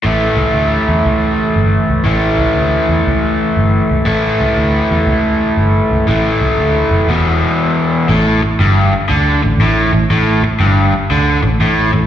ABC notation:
X:1
M:4/4
L:1/8
Q:"Swing" 1/4=119
K:Amix
V:1 name="Overdriven electric guitar" clef=bass
[A,,E,A,]8 | [A,,E,A,]8 | [A,,E,A,]8 | [A,,E,A,]4 [E,,B,,E,]4 |
A,, z G,, z D, A,, A,, A,, | A,, z G,, z D, A,, A,, A,, |]
V:2 name="Picked electric bass" clef=bass
A,,, C,, D,, E,, C,,2 G,,, C,, | A,,, C,, D,, E,, C,,2 G,,, C,, | A,,, C,, D,, E,, C,,2 G,,, C,, | A,,, C,, D,, F,,, E,,,2 z2 |
A,,, z G,,, z D,, A,,, A,,, A,,, | A,,, z G,,, z D,, A,,, A,,, A,,, |]